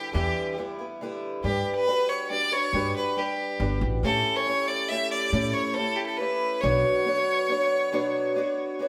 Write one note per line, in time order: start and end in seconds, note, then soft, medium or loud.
0.00 0.12 D3 medium
0.00 0.14 G3 medium
0.00 0.14 B3 medium
0.00 0.14 E4 medium
0.00 0.13 G4 medium
0.13 0.32 E2 medium
0.13 0.55 D3 medium
0.13 0.57 E3 medium
0.13 0.57 G3 medium
0.13 0.58 B3 medium
0.13 0.58 E4 medium
0.13 0.54 G4 medium
0.57 0.79 D3 medium
0.57 0.79 G3 medium
0.57 0.80 B3 medium
0.57 0.77 E4 medium
0.79 1.01 G3 soft
0.79 1.01 B3 soft
0.79 1.00 E4 medium
1.01 1.44 D3 medium
1.01 1.44 G3 medium
1.01 1.88 B3 medium
1.01 1.45 E4 medium
1.44 1.62 G2 medium
1.44 1.86 G3 medium
1.44 1.87 D4 medium
1.44 1.74 G4 medium
1.44 1.88 B4 medium
1.75 2.10 B4 loud
1.87 2.29 G3 medium
1.87 2.29 D4 medium
1.87 2.31 F#4 medium
1.87 2.31 B4 medium
2.09 2.30 C#5 medium
2.29 2.52 G3 medium
2.29 2.52 D4 medium
2.29 2.52 F#4 medium
2.29 2.51 B4 medium
2.29 2.54 D5 loud
2.52 2.73 D4 soft
2.52 2.74 F#4 soft
2.52 2.74 B4 soft
2.52 2.96 C#5 loud
2.73 2.91 G2 medium
2.73 3.16 G3 medium
2.73 3.17 D4 medium
2.73 3.18 F#4 medium
2.73 3.18 B4 medium
2.96 3.19 B4 medium
3.16 3.60 G3 medium
3.16 3.60 D4 medium
3.16 3.82 G4 medium
3.16 3.62 B4 medium
3.60 3.80 G1 medium
3.60 4.04 G3 medium
3.60 4.04 D4 medium
3.60 4.05 F#4 medium
3.60 4.05 B4 medium
3.81 4.01 A1 medium
4.03 4.21 A2 medium
4.03 4.47 A2 medium
4.03 4.45 A3 medium
4.03 4.47 C#4 medium
4.03 4.48 E4 medium
4.03 4.47 G4 medium
4.03 4.37 A4 loud
4.36 4.69 C#5 loud
4.46 4.89 A3 medium
4.46 4.91 C#4 medium
4.46 4.92 E4 medium
4.46 4.91 G4 medium
4.68 4.90 D5 medium
4.88 5.32 A3 medium
4.88 5.34 C#4 medium
4.88 5.33 G4 medium
4.88 5.10 E5 loud
4.93 5.34 E4 medium
5.11 5.55 D5 loud
5.33 5.51 A2 medium
5.33 5.77 A2 medium
5.33 5.74 A3 medium
5.33 5.76 C#4 medium
5.33 5.77 E4 medium
5.33 5.76 G4 medium
5.53 5.76 C#5 medium
5.74 6.17 A3 medium
5.74 6.19 C#4 medium
5.74 6.19 G4 medium
5.74 5.97 A4 loud
5.79 6.21 E4 medium
5.96 6.05 G4 medium
6.06 6.18 A4 medium
6.17 6.63 A3 medium
6.17 6.63 C#4 medium
6.17 6.64 G4 medium
6.17 6.62 B4 loud
6.22 6.64 E4 medium
6.60 6.82 B1 medium
6.60 7.06 B2 medium
6.60 7.92 F#3 medium
6.60 7.05 B3 medium
6.60 7.06 D4 medium
6.60 7.07 F#4 medium
6.60 8.78 C#5 loud
6.60 7.07 C#5 medium
7.05 7.48 B3 medium
7.05 7.50 D4 medium
7.05 7.51 F#4 medium
7.05 7.51 C#5 medium
7.49 7.93 B3 medium
7.49 7.93 D4 medium
7.49 7.94 F#4 medium
7.49 7.93 C#5 medium
7.92 8.36 B2 medium
7.92 8.36 F#3 medium
7.92 8.34 B3 medium
7.92 8.35 D4 medium
7.92 8.36 F#4 medium
7.92 8.37 C#5 medium
8.35 8.78 B3 medium
8.35 8.79 D4 medium
8.35 8.80 F#4 medium
8.35 8.81 C#5 medium
8.79 8.88 B3 medium
8.79 8.88 D4 medium
8.79 8.88 F#4 medium
8.79 8.88 C#5 medium